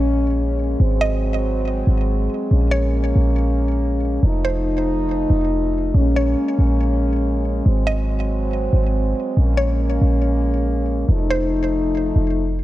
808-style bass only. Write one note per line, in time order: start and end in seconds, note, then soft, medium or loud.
0.00 0.76 A#1 loud
0.80 1.83 G#1 loud
1.87 2.28 G#1 loud
2.51 3.13 A#1 loud
3.16 4.19 A#1 loud
4.23 5.26 F1 loud
5.30 5.92 F1 loud
5.94 6.35 A#1 loud
6.59 7.62 A#1 loud
7.66 8.69 G#1 loud
8.73 9.14 G#1 loud
9.37 9.99 A#1 loud
10.02 11.05 A#1 loud
11.09 12.12 F1 loud
12.16 12.64 F1 loud